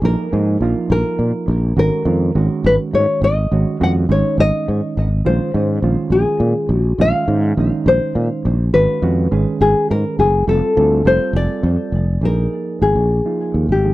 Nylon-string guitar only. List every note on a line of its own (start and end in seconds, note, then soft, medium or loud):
0.05 0.91 A#4 loud
0.92 1.78 A#4 medium
1.79 2.68 A#4 medium
2.66 2.74 B4 loud
2.95 3.24 C#5 medium
3.24 3.83 D#5 medium
3.83 3.91 F#5 medium
4.12 4.40 C#5 medium
4.40 5.01 D#5 loud
5.26 6.16 C5 medium
6.12 6.77 G#4 medium
6.77 7.02 F#4 medium
7.01 7.88 F5 loud
7.88 8.49 C5 medium
8.74 9.61 B4 loud
9.61 9.91 G#4 medium
9.91 10.18 A#4 medium
10.20 10.48 G#4 medium
10.49 11.90 A4 medium
11.07 11.36 C5 medium
11.36 12.25 D5 loud
12.25 12.82 A#4 medium
12.82 13.65 G#4 medium
13.72 13.94 G4 medium